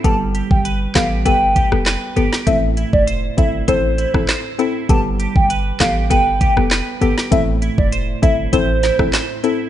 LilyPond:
<<
  \new Staff \with { instrumentName = "Soft synth lead" } { \time 4/4 \key a \minor \tempo 4 = 99 a''16 r8 g''16 r8 f''16 r16 g''8. r4 r16 | e''16 r8 d''16 r8 e''16 r16 c''8. r4 r16 | a''16 r8 g''16 r8 f''16 r16 g''8. r4 r16 | e''16 r8 d''16 r8 e''16 r16 c''8. r4 r16 | }
  \new Staff \with { instrumentName = "Clean electric guitar" } { \time 4/4 \key a \minor g8 g'8 b'8 g'8 b'8 g'8 b'8 g'8 | a,8 e'8 c''8 e'8 c''8 e'8 c''8 e'8 | g8 g'8 b'8 g'8 b'8 g'8 b'8 g'8 | a,8 e'8 c''8 e'8 c''8 e'8 c''8 e'8 | }
  \new Staff \with { instrumentName = "Synth pluck" } { \time 4/4 \key a \minor <b g' a'>4. <b g' a'>8 <b g' a'>8. <b g' a'>16 r8 <b g' a'>16 r16 | <c' e' a'>4. <c' e' a'>8 <c' e' a'>8. <c' e' a'>16 r8 <c' e' a'>16 r16 | <b g' a'>4. <b g' a'>8 <b g' a'>8. <b g' a'>16 r8 <b g' a'>16 r16 | <c' e' a'>4. <c' e' a'>8 <c' e' a'>8. <c' e' a'>16 r8 <c' e' a'>16 r16 | }
  \new Staff \with { instrumentName = "808-style bass" } { \clef bass \time 4/4 \key a \minor g,,8. g,,8. a,,8 g,,8. f,,8 r16 g,,16 r16 | a,,8. f,,8. g,,8 a,,8. a,,16 r4 | g,,8. g,,8. a,,8 g,,8. f,,8 r16 g,,16 r16 | a,,8. f,,8. g,,8 a,,8. a,,16 r4 | }
  \new DrumStaff \with { instrumentName = "Drums" } \drummode { \time 4/4 <hh bd>8 hh16 bd16 hh8 <hc hh bd sn>8 <hh bd>8 <hh bd>16 ss16 <hc hh sn>8 hh16 sn16 | <hh bd>8 hh16 bd16 hh8 <hh bd>8 <hh bd>8 hh16 <bd ss>16 <hc hh sn>8 hh8 | <hh bd>8 hh16 bd16 hh8 <hc hh bd sn>8 <hh bd>8 <hh bd>16 ss16 <hc hh sn>8 hh16 sn16 | <hh bd>8 hh16 bd16 hh8 <hh bd>8 <hh bd>8 <hh sn>16 <bd ss>16 <hc hh sn>8 hh8 | }
>>